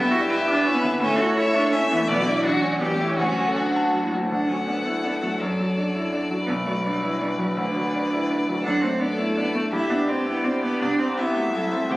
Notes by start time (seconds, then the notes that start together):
Already playing: G2 B3 G4 E5
0.02 B3
0.11 E4 F#4
0.20 D5
0.29 E4 B4 E5
0.38 E5
0.47 D4 D6
0.56 B4
0.65 C#4 E4 B4
0.74 B3
0.83 D3 B3
0.92 B3
1.00 A2 C#4 A4 E5
1.10 A3
1.18 E4 F#4
1.29 C#5
1.37 E4 A4 C#5 E5
1.46 E5
1.54 D4 C#6
1.64 A4
1.72 C#4 E4 E5
1.83 A3
1.91 E3 B3
1.99 A3
2.08 B1 B3 D5
2.18 F#3
2.26 D4 E4
2.36 D5
2.44 A1 D4 F#4
2.55 F#3
2.61 C#4 D4
2.72 D5
2.79 A1 B3 G4
2.91 G3
2.99 A3 E4
3.09 C#4 C#5
3.16 D2 C#4 F#4
3.29 F#3
3.38 F#4
3.48 A4
3.55 D4 F#4
3.66 F#5
3.76 A5
3.84 F#4
3.94 F#3
4.03 A2
4.13 F#3
4.21 A2
4.29 D2 D4 A4 F#5
4.49 F#3 C#4
4.67 B3 D4
4.85 A3 E4
5.03 B3 D4
5.22 F#3 A3
5.39 F#2 F#3 D5
5.60 F#3
5.77 D4
5.95 E4
6.13 D4
6.31 F#3
6.47 B1 B3 B4
6.66 F#3 A3
6.83 G3 D4
7.02 F#3 E4
7.20 G3 D4
7.39 F#3
7.57 D2 D3 D5
7.75 F#3
7.94 D4
8.13 E4
8.30 D4
8.48 F#3
8.63 F#2 D4 A4 F#5
8.81 A3 C4
9.00 B3 D4 D5
9.18 A3 E4
9.36 B3 D4 D5
9.54 A3
9.71 G2 E4 G4 E5
9.90 B3 D4
10.08 C4 D4 D5
10.26 B3 E4
10.44 C4 D4 G4
10.62 B3
10.80 C2 D4
10.99 C4
11.17 B3 E4 E5
11.36 A3 F#4
11.46 G3
11.53 F#3 E4 A4
11.72 G3 C4
11.82 A3
11.89 D2 C4 G4 G5